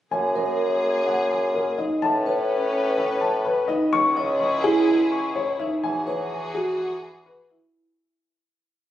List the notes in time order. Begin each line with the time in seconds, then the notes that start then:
0.11 F#2 A#3 G#4 G#5
0.35 A#4 C#5
1.07 F#5
1.31 G#5
1.54 A#4
1.78 D#4 D#5
2.02 A2 C#4 B4 A5
2.26 B4 C#5
2.98 E5
3.21 A5
3.45 B4
3.68 D#4 D#5
3.92 C#2 E4 G#4 C#6
4.16 C#5 D#5
4.40 C#6
4.64 E4 G#4
4.88 G#5
5.12 C#6
5.36 C#5
5.59 D#4 E5
5.83 E2 F#4 G#4 G#5
6.07 B4 C#5
6.31 G#5
6.55 F#4 G#4
6.78 F#5
7.02 G#5
7.26 B4
7.50 E4 E5